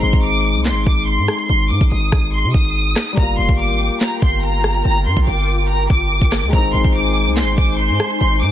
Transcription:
Already playing: G#3 C4 D#4
0.02 G#1 C6
0.13 G#1, kick, closed hi-hat
0.23 D6, closed hi-hat
0.45 closed hi-hat
0.55 C2
0.65 C6, snare, clap, closed hi-hat
0.71 G#1
0.86 G#1 D6, kick
1.07 C6, closed hi-hat
1.18 G#2
1.28 cross-stick
1.39 closed hi-hat
1.49 G#1 C6, closed hi-hat
1.70 G#2 D6, closed hi-hat
1.81 G#1, kick
1.91 G#1 D#6, closed hi-hat
2.12 G#1, kick, cross-stick, closed hi-hat
2.33 C6
2.44 C3
2.54 G#1 D#6, kick
2.65 closed hi-hat
2.96 cross-stick, snare, clap, open hi-hat
3.13 G3
3.17 G1 A#3 F4 A#4 G5 A#5, kick, closed hi-hat
3.22 F4
3.38 F1 C6
3.48 G1, kick, closed hi-hat
3.59 D6, closed hi-hat
3.70 G#1
3.80 closed hi-hat
4.01 A#5, snare, clap, closed hi-hat
4.22 G1 C6, kick
4.43 A#5, closed hi-hat
4.64 cross-stick
4.74 closed hi-hat
4.85 G1 A#5, closed hi-hat
5.06 G2 C6, closed hi-hat
5.17 A#1, kick
5.27 G1 D6, closed hi-hat
5.48 closed hi-hat
5.69 A#5
5.90 G1 D6, kick
6.00 closed hi-hat
6.22 G1, kick
6.32 cross-stick, snare, clap, closed hi-hat
6.43 D2
6.48 G#3
6.53 G#1 C4 D#4 C5 G#5 A#5, kick, closed hi-hat
6.58 D#4
6.74 G#1 C6
6.84 G#1, kick, closed hi-hat
6.95 D6, closed hi-hat
7.16 closed hi-hat
7.26 C2
7.37 C6, snare, clap, closed hi-hat
7.42 G#1
7.58 G#1 D6, kick
7.79 C6, closed hi-hat
7.89 G#2
8.00 cross-stick
8.10 closed hi-hat
8.21 G#1 C6, closed hi-hat
8.42 G#2 D6, closed hi-hat

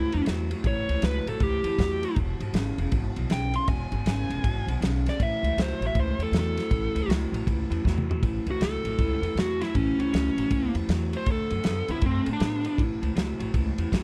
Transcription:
Already playing: A2 E3 E4
0.12 E2 A2 E3, ride
0.26 E2 A2 F#3, snare, ride
0.51 A2 F#3, ride
0.64 A1 A2 E3 C#5, kick, ride
0.89 C#2 A2 E3, ride
1.02 C#2 A2 F#3 B4, snare, ride
1.26 A1 A2 F#3 A4, ride
1.40 C#2 A2 E3 G4, kick, ride
1.64 E2 A2 E3, ride
1.79 E2 A2 F#3, kick, snare, ride
2.03 A2 F#3, ride
2.16 E1 E2 B2, kick, ride
2.40 G#1 E2 B2, ride
2.53 G#1 E2 C#3, snare, ride
2.78 E1 E2 C#3, ride
2.92 G#1 E2 B2, kick, ride
3.16 B1 E2 B2, ride
3.30 B1 E2 C#3 G5, snare, ride
3.54 E2 C#3 C6, ride
3.68 E1 E2 B2 G#5, kick, ride
3.92 G#1 E2 B2, ride
4.06 G#1 E2 C#3, snare, ride
4.30 E1 E2 C#3, ride
4.44 G#1 E2 B2, kick, ride
4.67 B1 E2 B2, ride
4.81 B1 E2 C#3, snare, ride
5.06 E2 C#3 D5, snare, ride
5.19 A1 A2 E3 E5, kick, ride
5.43 C#2 A2 E3, ride
5.57 C#2 A2 F#3, snare, ride
5.61 C5
5.80 A1 A2 F#3, ride
5.87 E5
5.95 C#2 A2 E3, kick, ride
6.00 C5
6.18 E2 A2 E3, ride
6.23 A4
6.32 E2 A2 F#3, snare, ride
6.39 A4
6.57 A2 F#3, snare, ride
6.71 A1 A2 E3, kick, ride
6.95 C#2 A2 E3, ride
7.08 C#2 A2 F#3, snare, ride
7.32 A1 A2 F#3, ride
7.46 C#2 A2 E3, kick, ride
7.70 E2 A2 E3, ride
7.84 E2 A2 F#3, kick, snare
7.98 mid tom
8.09 A2 F#3, floor tom
8.22 A1 A2 E3, kick, ride
8.46 C#2 A2 E3, ride
8.51 F#4
8.61 C#2 A2 F#3 A4, snare, ride
8.84 A1 A2 F#3, ride
8.98 C#2 A2 E3, kick, ride
9.22 E2 A2 E3, ride
9.35 E2 A2 F#3, snare, ride
9.39 F#4
9.61 A2 F#3 E4, snare, ride
9.75 A1 A2 E3 C#4, kick, ride
9.99 C#2 A2 E3 C#4, ride
10.12 C#2 A2 F#3, snare, ride
10.37 A1 A2 F#3, ride
10.50 C#2 A2 E3, kick, ride
10.74 E2 A2 E3, ride
10.88 E2 A2 F#3, snare, ride
11.13 A2 F#3, ride
11.17 C5
11.26 D2 D3 A3, kick, ride
11.32 A4
11.50 F#2 D3 A3, ride
11.64 F#2 D3 B3, snare, ride
11.88 D2 D3 B3 E4, ride
12.02 F#2 D3 A3, kick, ride
12.06 C4
12.26 A2 D3 A3, ride
12.33 D4
12.40 A2 D3 B3, snare, ride
12.64 D3 B3, ride
12.78 A1 A2 E3, kick, ride
13.02 C#2 A2 E3, ride
13.16 C#2 A2 F#3, snare, ride
13.40 A1 A2 F#3, ride
13.54 C#2 A2 E3, kick, ride
13.78 E2 A2 E3, ride
13.92 E2 A2 F#3, kick, snare, ride

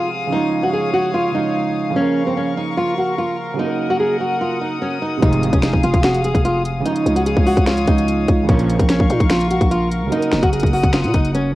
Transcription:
Already playing: C3 F3 G#3 D#4 F4 G#4 F5 D#6
0.27 C#3 F3
0.32 G#3 D#4 C#5
0.38 F4
0.63 F#4
0.73 G#4
0.94 F#4
1.14 F4
1.32 C#3 F3 G#3 D#4
1.37 F4
1.90 C#3 F3
1.96 A#3 C#4 F4 A#4 C#6
2.01 A#4
2.27 C4
2.37 C#4
2.57 D#4
2.77 F4
2.98 F#4
3.18 F4
3.54 C#3 F#3
3.59 A#3 D#4 F#5 D#6
3.64 A#4
3.90 F#4
4.00 G#4
4.20 F#4
4.41 F4
4.61 D#4
4.82 C#4
5.02 D#4
5.17 C3 F3
5.22 F1 G#2 C3 D#3 G#3 D#4 G#4 F5, kick, closed hi-hat
5.28 F4
5.33 closed hi-hat
5.43 closed hi-hat
5.53 F1 C#4, kick, closed hi-hat
5.62 D#4, finger snap, snare, closed hi-hat
5.73 F1, kick
5.83 F1 F4, closed hi-hat
5.94 F1, kick, closed hi-hat
6.03 F#4, finger snap, snare, closed hi-hat
6.14 closed hi-hat
6.24 G#4, closed hi-hat
6.35 F1, kick, closed hi-hat
6.45 F4, closed hi-hat
6.65 closed hi-hat
6.80 C#3 F3
6.85 G#3 D#4 C#5 F5 D#6, closed hi-hat
6.91 F4
6.96 closed hi-hat
7.06 C#2, closed hi-hat
7.16 F#4, closed hi-hat
7.26 G#4, closed hi-hat
7.37 C#2, kick
7.47 F#4, open hi-hat
7.57 C#2, kick, closed hi-hat
7.66 F4, finger snap, snare, closed hi-hat
7.78 closed hi-hat
7.85 C#2 C#3 F3 G#3 D#4, kick, closed hi-hat
7.90 F4
7.98 closed hi-hat
8.08 closed hi-hat
8.28 C#2, kick, closed hi-hat
8.43 C#3 F3
8.49 A#1 A#2 C#3 F3 A#3 C#4 F4 A#4 F5 C#6, kick, closed hi-hat
8.54 A#4
8.59 closed hi-hat
8.70 closed hi-hat
8.79 A#1 C4, kick, closed hi-hat
8.89 C#4, finger snap, snare, closed hi-hat
9.00 A#1, kick
9.10 A#2 D#4, closed hi-hat
9.20 A#1, kick, closed hi-hat
9.30 F4, finger snap, snare, closed hi-hat
9.41 closed hi-hat
9.51 F#4, closed hi-hat
9.61 A#1, kick, closed hi-hat
9.71 F4, closed hi-hat
9.91 closed hi-hat
10.02 C#2
10.07 C#3 F#3
10.12 A#3 D#4 F#5 D#6, closed hi-hat
10.17 A#4
10.22 closed hi-hat
10.31 F#1, finger snap, snare, closed hi-hat
10.43 F#1 F#4, kick, closed hi-hat
10.53 G#4, closed hi-hat
10.60 F#1, kick, closed hi-hat
10.66 closed hi-hat
10.73 F#4, open hi-hat
10.83 F#1, kick, closed hi-hat
10.93 F4, finger snap, snare, closed hi-hat
11.04 A#2, closed hi-hat
11.14 F#1 D#4, kick, closed hi-hat
11.25 closed hi-hat
11.35 C#4, closed hi-hat

